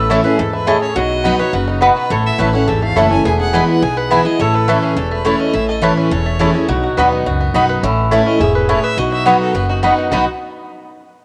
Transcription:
Already playing: A1 A2 A3 A4 B4
0.10 E3 A3 C#4 E4 A4 C#5 A5
0.24 C#4 E4 G#4 B4
0.38 E2 G#2 A4
0.53 E4 B4
0.67 A2 A3 E4 G#4 A4 C#5 D#5 A5
0.82 C#4 C#5
0.96 B1 B2 F#3 F#4 D#5
1.24 F#3 B3 D#4 F#4 D#5 B5
1.39 D#4 F#4 B4 C#5
1.53 F#1 C#3 F#4 B4
1.68 D#4
1.81 B2 B3 F#4 B4 D#5 B5
1.96 B3 B4
2.10 A1 A2 E4 A4 C#5
2.26 E5
2.38 A1 E3 A3 C#4 E4 B4 C#5 A5
2.53 C#4 E4 F#5
2.68 G#1 E2 A4 E5
2.82 A3 F5
2.96 F#1 E3 A3 C#4 E4 A4 C#5 F#5 A5
3.11 C#4 E4 G#5
3.25 E1 E2 B3 G#4 G#5
3.40 G#4 F#5
3.53 E3 G#3 B3 E4 B4 D#5 G#5
3.68 B3 F#5
3.82 B1 B2 G#4 G#5
3.97 B4 F#5
4.10 E3 G#3 B3 E4 B4 E5 G#5
4.25 B3 E4 G#4 D#5
4.39 A1 A2 E4 A4 C#5
4.54 A4 B4
4.68 E3 A3 C#4 E4 A4 B4 C#5 A5
4.83 C#4 G#4
4.96 E1 E2 A4
5.11 A3 B4
5.25 E3 A3 C#4 E4 A4 C#5 A5
5.40 C#4 D#5
5.53 A1 A2 E4 E5
5.68 A4 D#5
5.82 E3 A3 C#4 E4 B4 C#5 A5
5.97 C#4 B4
6.11 E1 E2 A4 C#5
6.26 A3
6.39 E3 A3 C#4 E4 G#4 A4 C#5 A5
6.54 C#4 E4
6.69 B1 B2 D#4 F#4
6.83 F#4
6.97 D#2 F#3 B3 D#4 F#4 B4 D#5 B5
7.12 B3
7.26 C#2 F#2 F#4
7.41 B3
7.54 B1 F#3 B3 D#4 F#4 D#5 B5
7.69 B4
7.83 A1 A2 C#4 E4
8.11 E3 A3 C#4 E4 A4 C#5 A5
8.26 C#4 D#5
8.40 E1 G#2 E4 G#4 E5
8.55 A4 B4
8.69 A2 A3 C#4 E4 C#5 A5
8.84 B4 E5
8.97 B1 B2 F#4 D#5
9.12 D#4 E5
9.25 F#3 B3 D#4 F#4 B4 C#5 D#5 B5
9.40 F#4 A4
9.54 F#1 F#2 B3 B4
9.69 D#4 F#4
9.83 F#3 B3 D#4 F#4 D#5 B5
9.98 D#4
10.11 B1 B2 F#3 B3 D#4 F#4 D#5 B5
10.16 F#4

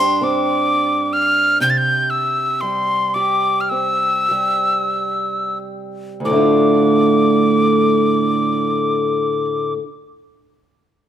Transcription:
Already playing: G2 G4 C6
0.00 D4
0.21 C4 D6
1.13 F6
1.60 C3 G6
1.70 A6
1.78 G6
2.10 E6
2.61 G3 C6
3.14 G4 D6
3.61 F6
3.70 C4 E6
4.31 G3
6.20 D2
6.25 A2 D6
6.30 D3 A3
6.35 D4 F4

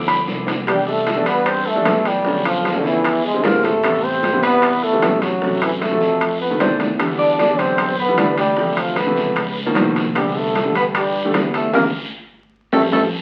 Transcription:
Already playing: G1 F3 A3 B3 E4
0.08 B5, low bongo, high conga, high timbale
0.27 C2, low bongo, high conga, short guiro
0.47 low bongo, high conga, high timbale, short guiro
0.67 E3 G3 B3 D4 G4, high bongo, high timbale, long guiro
0.87 A3 A4, high bongo, high conga
1.06 high bongo, high conga, high timbale, low timbale, short guiro
1.17 E3 G3 B3 D4
1.26 G2 B3 B4, high timbale, short guiro
1.46 C4 C5, high bongo, high conga, high timbale, long guiro
1.66 A3 A4, high bongo, high conga
1.76 E3 G3 B3 D4
1.85 B1 E3 G3 B3 E4, high bongo, low bongo, high conga, high timbale, low timbale, short guiro
2.05 G3 G4, high bongo, high conga, high timbale, short guiro
2.25 D3 F3 A3 C#4, high bongo, high conga, long guiro
2.45 F3 F4, high bongo, high conga, high timbale
2.64 high bongo, high conga, high timbale, low timbale, short guiro
2.74 D3 F3 A3 C#4 D4
2.79 D3
2.84 E2 E3 E4, short guiro
3.04 high bongo, high conga, high timbale, long guiro
3.24 G#3 G#4, high bongo, high conga
3.34 D3 G3 G#3 C4
3.44 A1 D3 G3 G#3 A#3 C4 A#4, high bongo, low bongo, high conga, high timbale, low timbale, short guiro
3.63 A3 A4, high bongo, high conga, high timbale, short guiro
3.83 C3 E3 G3 B3, high bongo, high conga, high timbale, long guiro
4.04 C4 C5, high bongo, high conga
4.23 high bongo, high conga, high timbale, low timbale, short guiro
4.33 C3 E3 G3 B3
4.42 E2 B3 B4, high conga, high timbale, short guiro
4.62 high bongo, high conga, high timbale, long guiro
4.83 A3 A4, high bongo, high conga
4.93 C3 E3 G3 B3
5.02 F#2 C3 E3 G3 B3, high bongo, low bongo, high conga, high timbale, low timbale, short guiro
5.22 F#3 F#4, high bongo, high conga, high timbale, short guiro
5.42 C3 E3 F#3 A3, high bongo, high conga, long guiro
5.62 E3 E4, high timbale
5.81 A3 A4, high bongo, high conga, high timbale, low timbale, short guiro
5.92 C3 E3 F#3 A3
6.01 F2, short guiro
6.21 high conga, high timbale, long guiro
6.41 B3 B4, high conga
6.50 C3 D#3 A3 B3
6.60 E2 C3 D#3 A3 C4 D4 C5, high conga, high timbale, low timbale, short guiro
6.80 low bongo, high conga, high timbale, short guiro
6.99 D3 E3 G3 B3, high bongo, high conga, high timbale, long guiro
7.19 D4 D5, high bongo, high conga
7.39 high bongo, high conga, high timbale, low timbale, short guiro
7.48 D3 E3 G3 D4
7.59 B1 C4 C5, high conga, high timbale, short guiro
7.78 high bongo, high conga, high timbale, long guiro
7.98 B3 B4, high bongo, high conga
8.08 D3 E3 G3 B3
8.18 D2 D3 E3 G3 D4, high bongo, low bongo, high conga, high timbale, low timbale, short guiro
8.37 G3 G4, high bongo, high conga, high timbale, short guiro
8.57 C3 E3 F3 A3, high bongo, high conga, long guiro
8.76 F3 F4, high bongo, high conga, high timbale
8.96 B3 B4, high bongo, high conga, high timbale, low timbale, short guiro
9.06 C3 E3 F3 A3
9.16 C#2, high conga, short guiro
9.36 high bongo, high conga, high timbale, long guiro
9.56 high bongo, high conga
9.66 B2 D#3 F3 A#3
9.75 C2 B2 D#3 F3 A#3, high bongo, low bongo, high conga, high timbale, low timbale, short guiro
9.95 high bongo, high conga, high timbale, short guiro
10.15 D3 E3 G3 B3 G4, high bongo, high conga, high timbale, long guiro
10.35 A3 A4, high bongo, high conga
10.55 high bongo, high conga, high timbale, low timbale, short guiro
10.64 D3 E3 G3 A3
10.75 G2 B3 B4, high conga, high timbale, short guiro
10.95 G3 G4, high bongo, high conga, high timbale, long guiro
11.15 high bongo, high conga
11.25 D3 E3 G3 A3
11.34 E2 D3 E3 G3 B3, high bongo, low bongo, high conga, high timbale, low timbale, short guiro
11.54 A3 A4, high bongo, high timbale, short guiro
11.73 E2 D3 E3 G3 A#3 A#4, high bongo, high conga, high timbale, long guiro
12.72 A1 F3 G3 A3 A4, high bongo, high conga, high timbale, long guiro
12.92 A1 F3 G3 A3 A4, high bongo, high conga, high timbale, long guiro

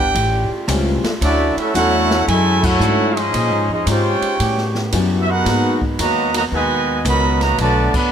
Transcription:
Already playing: G1 E3 G3 B3 D4 G4 B4 F#5 G5
0.14 A1 A2 C#3 G3 A3 C#4 F4, kick, ride
0.49 muted upright bass stroke
0.68 C#2 A2 G3 A3 C4 C#4 F4 G4, kick, hi-hat pedal, ride
1.03 muted upright bass stroke, snare, ride
1.21 D2 D3 F#3 A3 C#4 D4 E4 F#4 D5, kick, ride
1.56 A3 C#4 E4 F#4 A4 E5, muted upright bass stroke, ride
1.74 E2 D3 F#3 A3 C#4 D4 E4 F#4 A4 C#5 F#5, kick, hi-hat pedal, ride
2.11 snare
2.27 F#2 D3 F#3 G#3 C#4 E4 A4 C#5 G#5, kick, ride
2.62 A3 C#4 E4 F#4 A4 C#5 F#5, kick, crash
2.79 G#2 D3 F#3 A3 C#4 D4 E4, hi-hat pedal
3.16 F3 G#3 C#4 D#4 G#4 C5 D#5, ride
3.33 A#2 C#3 G#3 C#4 D#4, kick, ride
3.50 G#2
3.68 F2 F3 G#3 D#4
3.73 C#4 G#4 C5 D#5
3.86 G#2 A#2 G#3 C4 C#4 D#4 F4 G4 C5 C#5, kick, hi-hat pedal, ride
3.90 G5
4.21 muted upright bass stroke, ride
4.40 A2 G3 B3 C#4 F#4 G4, kick, ride
4.58 snare
4.75 snare
4.92 F#2 A2 F#3 G3 B3 C#4 E4 F#4 G4, kick, hi-hat pedal, ride
5.20 E5
5.28 B3 D#4 F#4 A#4 B4 F#5
5.45 G#2 B2 F#3 G#3 A#3 B3 D#4 F#4 G#4 A#4, kick, snare, ride
5.82 kick
5.99 E2 D#3 F#3 G#3 A#3 B3 F#4 A#4 B4 D#5 A#5, kick, hi-hat pedal, ride
6.34 D#3 F#3 A#3 F#4 B4 D#5 A#5, ride
6.51 D#2 B2 D#3 G#3 B3 F#4 A#4 B4 D#5 G#5, kick
7.05 C#2 D#3 F#3 G#3 B3 F#4 A#4 D#5 B5, kick, hi-hat pedal, ride
7.41 D#3 F#3 A#3 F#4 B4 D#5 A#5, snare, ride
7.57 B1 B2 D3 F#3 A3 B3 D4 F#4 B4 D5 A5, kick, ride
7.94 D3 F#3 B3 A4 D5 F#5 B5, muted upright bass stroke, kick, crash

